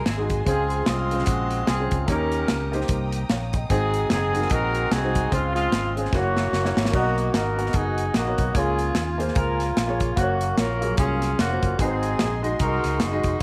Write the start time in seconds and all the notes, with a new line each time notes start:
Already playing: D#5 G#5 C6 D#6
0.06 G#1 C4 G#4, snare, closed hi-hat
0.17 G#3 D#4 F#4 G#4
0.30 kick, closed hi-hat
0.45 C#2 C#3 G#3 C4 F4 G#4 C5 F5, kick, closed hi-hat
0.70 closed hi-hat
0.86 C2 G#3 C4 F4, snare, closed hi-hat
1.11 C#3 G#3 F4 C5, closed hi-hat
1.19 snare
1.24 A#1 C4 F#4, kick, closed hi-hat
1.51 closed hi-hat
1.65 C2 C4 F4 G#4, snare, closed hi-hat
1.80 G#3 C#4 F4 C5
1.91 C#2, kick, closed hi-hat
2.06 D#2 D#3 A#3 C#4 D#4 G4 A#4 C#5 G5 A#5 D#6, kick, closed hi-hat
2.32 closed hi-hat
2.48 C#2, snare, closed hi-hat
2.72 A#3 D#4 G4 C5, closed hi-hat
2.81 snare
2.88 C2, kick, closed hi-hat
3.12 closed hi-hat
3.29 A#1 C#5 F5, snare, closed hi-hat
3.53 D#5 G5, kick, closed hi-hat
3.69 G#1 G#2 G#3 C4 D#4 F#4 G#4 C5 F#5 G#5 C6, kick, closed hi-hat
3.94 closed hi-hat
4.10 F#1 C4 D#4 G#4, snare, closed hi-hat
4.33 G#3 D#4 F#4 G#4, closed hi-hat
4.40 A#4, snare
4.50 A#1 D#4 F#4 A#4, kick, closed hi-hat
4.75 closed hi-hat
4.91 C2 C4 D#4 G#4, snare, closed hi-hat
5.02 G#3 D#4 F#4 C5
5.15 kick, closed hi-hat
5.31 C#2 C#3 G#3 C4 F4 C5 F5, kick, closed hi-hat
5.55 G#3 C4 F4, closed hi-hat
5.72 G#1, snare, closed hi-hat
5.96 G#3 C#4 F4 G#4 C5, closed hi-hat
6.05 snare
6.13 F#1 A#3 C#4 E4 F#4 C#5 E5 F#5, kick, snare
6.37 snare
6.52 F#1, snare
6.64 A#3 E4 F#4 C#5, snare
6.77 G#1, snare
6.85 snare
6.92 B1 B2 A#3 D#4 F#4 A#4 D5 D#5 F#5, kick, crash
6.99 D#5
7.18 closed hi-hat
7.34 G#1 D#4 F#4 A#4, snare, closed hi-hat
7.57 B3 F#4 A#4 F#5, closed hi-hat
7.66 snare
7.73 F#1 D#4 G#4, kick, closed hi-hat
7.98 closed hi-hat
8.14 A#1 A#3 D#4 F#4, snare, closed hi-hat
8.26 B3 F#4 A#4 C#5
8.38 B1, kick, closed hi-hat
8.54 C#2 C#3 A#3 F4 G#4 C#5 F5 G#5, kick, closed hi-hat
8.79 closed hi-hat
8.95 D#2, snare, closed hi-hat
9.18 A#3 F4 G#4 C5, closed hi-hat
9.28 snare
9.35 C#2 F4 A#4, kick, closed hi-hat
9.60 snare, closed hi-hat
9.77 A#1, snare, closed hi-hat
9.87 A#3 F4 G#4 C#5
10.00 kick, closed hi-hat
10.16 F#1 A#3 C#4 F#4 C5 F5, kick, closed hi-hat
10.22 C#5
10.41 closed hi-hat
10.57 A#1 C#4 F4 A#4, snare, closed hi-hat
10.81 F#3 A#3 F4 G#4, closed hi-hat
10.97 C2 C#4 F4 G#4, kick, closed hi-hat
11.22 snare, closed hi-hat
11.39 F1 A#3 C#4 F#4, snare, closed hi-hat
11.50 A#3 F4 F#4 C5
11.63 F#1, kick, closed hi-hat
11.78 G#1 G#2 G#3 C4 D#4 F#4 G#4 B4 D#5 G#5 C6, kick, closed hi-hat
11.82 G#4 C5
12.03 closed hi-hat
12.19 A#1, snare, closed hi-hat
12.42 G#3 D#4 F#4 D#5, closed hi-hat
12.59 C2 D#4 F#4 A#4, kick, closed hi-hat
12.84 C#2, snare, closed hi-hat
13.00 F#1, snare, closed hi-hat
13.11 G#3 D#4 F#4 D#5
13.23 F1, kick, closed hi-hat